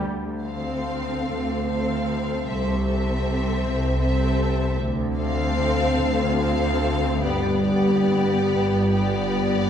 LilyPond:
<<
  \new Staff \with { instrumentName = "Violin section" } { \time 6/8 \key d \dorian \tempo 4. = 49 r8 f''4. f''4 | e''8 e''4. e''4 | r8 f''4. f''4 | d''8 d''4. d''4 | }
  \new Staff \with { instrumentName = "Violin section" } { \time 6/8 \key d \dorian r8 a'4. a'4 | a'8 a'4. a'4 | r8 a'4. a'4 | g'8 g'4. g'4 | }
  \new Staff \with { instrumentName = "Viola section" } { \time 6/8 \key d \dorian r8 c'4. c'4 | c'8 c'4. c'4 | r8 c'4. c'4 | b8 b4. b4 | }
  \new Staff \with { instrumentName = "Cello section" } { \clef bass \time 6/8 \key d \dorian d,4. d,4. | c,4. c,4. | d,4. d,4. | g,4. g,4. | }
  \new Staff \with { instrumentName = "Double bass section" } { \clef bass \time 6/8 \key d \dorian d,4. d,4. | c,4. c,4. | d,4. d,4. | g,,4. g,,4. | }
>>